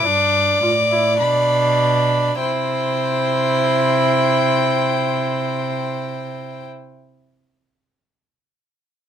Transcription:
Already playing: violin D6
0.05 cello G2, viola D4, violin D5
0.62 cello A2, viola F4
0.91 viola E4
1.20 cello B2, viola D4, violin B5
2.40 cello C3, viola E4, violin C5 G5

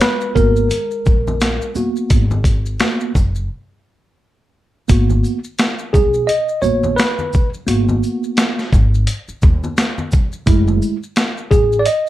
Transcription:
Already playing: tine electric piano G#3 B3 F#4
0.01 tine electric piano B4, snare, closed hi-hat, maracas
0.21 maracas
0.35 upright bass G#1, tine electric piano A#3 B3 F#4 A#4, kick, low conga, maracas, shaker
0.56 maracas
0.70 closed hi-hat, high conga, maracas
0.91 maracas
1.06 upright bass A#1, kick, low conga, shaker, maracas
1.27 high conga, maracas
1.41 snare, closed hi-hat, maracas
1.62 maracas
1.75 tine electric piano A#3 B3 F#4, low conga, shaker, maracas
1.96 maracas
2.10 upright bass G#1, kick, closed hi-hat, maracas
2.31 high conga, maracas
2.44 kick, closed hi-hat, high conga, shaker, maracas
2.66 maracas
2.80 tine electric piano A#3 B3 F#4, snare, closed hi-hat, maracas
3.00 maracas
3.15 upright bass F#1, kick, low conga, maracas, shaker
3.35 maracas
4.88 upright bass G#1, tine electric piano A#3 B3 F#4, kick, closed hi-hat, maracas
5.10 high conga, maracas
5.24 maracas, shaker
5.44 maracas
5.59 snare, closed hi-hat, maracas
5.79 maracas
5.93 upright bass B1, tine electric piano G#4, kick, low conga, maracas, shaker
6.14 maracas
6.27 tine electric piano D#5, closed hi-hat, maracas
6.49 maracas
6.62 upright bass A#1, tine electric piano A#3 B3 F#4 C#5, low conga, maracas, shaker
6.84 high conga, maracas
6.96 tine electric piano B4, snare, closed hi-hat, maracas
7.19 high conga, maracas
7.33 kick, low conga, shaker, maracas
7.54 maracas
7.67 upright bass G#1, tine electric piano A#3 B3 F#4, closed hi-hat, maracas
7.89 high conga, maracas
8.03 maracas, shaker
8.24 maracas
8.37 snare, closed hi-hat, maracas
8.59 snare, maracas
8.73 upright bass G#1, kick, low conga, shaker, maracas
8.94 maracas
9.07 closed hi-hat, maracas
9.28 muted upright bass stroke, maracas
9.42 upright bass D#2, kick, low conga, shaker, maracas
9.64 high conga, maracas
9.77 snare, closed hi-hat, maracas
9.98 high conga, maracas
10.11 kick, low conga, shaker, maracas
10.32 maracas
10.46 upright bass F#1, tine electric piano G#3 A3 E4, kick, closed hi-hat, maracas
10.68 high conga, maracas
10.82 maracas, shaker
11.03 maracas
11.16 snare, closed hi-hat, maracas
11.38 maracas
11.51 upright bass A1, tine electric piano G#4, kick, low conga, shaker, maracas
11.72 maracas
11.79 tine electric piano D5
11.86 tine electric piano D#5, closed hi-hat, maracas

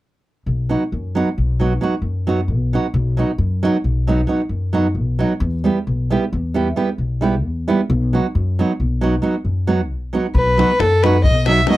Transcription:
0.46 upright bass B1
0.69 nylon-string guitar F#3 B3 D#4 F#4
0.92 upright bass F#2
1.15 nylon-string guitar F#3 B3 D#4 F#4
1.38 upright bass B1
1.60 nylon-string guitar F#3 B3 D#4 F#4
1.81 nylon-string guitar F#3 B3 D#4 F#4
2.02 upright bass F#2
2.27 nylon-string guitar F#3 B3 D#4 F#4
2.48 upright bass B1
2.73 nylon-string guitar F#3 B3 D#4 F#4
2.94 upright bass B1
3.17 nylon-string guitar F#3 B3 D#4 F#4
3.38 upright bass F#2
3.63 nylon-string guitar F#3 B3 D#4 F#4
3.84 upright bass B1
4.07 nylon-string guitar F#3 B3 D#4 F#4
4.27 nylon-string guitar F#3 B3 D#4 F#4
4.49 upright bass F#2
4.73 nylon-string guitar F#3 B3 D#4 F#4
4.95 upright bass B1
5.19 nylon-string guitar F#3 B3 D#4 F#4
5.40 upright bass E2
5.64 nylon-string guitar G3 B3 E4 G4
5.87 upright bass B1
6.10 nylon-string guitar G3 B3 E4 G4
6.33 upright bass E2
6.54 nylon-string guitar G3 B3 E4 G4
6.76 nylon-string guitar G3 B3 E4 G4
6.98 upright bass B1
7.21 nylon-string guitar G3 B3 E4 G4
7.43 upright bass E2
7.68 nylon-string guitar G3 B3 E4 G4
7.90 upright bass B1
8.13 nylon-string guitar F#3 B3 D#4 F#4
8.35 upright bass F#2
8.59 nylon-string guitar F#3 B3 D#4 F#4
8.80 upright bass B1
9.01 nylon-string guitar F#3 B3 D#4 F#4
9.22 nylon-string guitar F#3 B3 D#4 F#4
9.44 upright bass F#2
9.67 nylon-string guitar F#3 B3 D#4 F#4
9.90 upright bass B1
10.13 nylon-string guitar F#3 B3 D#4 F#4
10.35 upright bass B1, fiddle B4, davul low
10.58 nylon-string guitar F#3 B3 D#4 F#4, davul high
10.79 upright bass F#2, fiddle A4, davul high
11.03 nylon-string guitar F#3 B3 D#4 F#4, fiddle B4, davul high
11.14 davul high
11.24 upright bass B1, fiddle D#5, davul low
11.35 davul high
11.46 nylon-string guitar F#3 B3 D#4 F#4, fiddle E5, davul high
11.57 davul high
11.67 nylon-string guitar F#3 B3 D#4 F#4, fiddle D#5, davul high

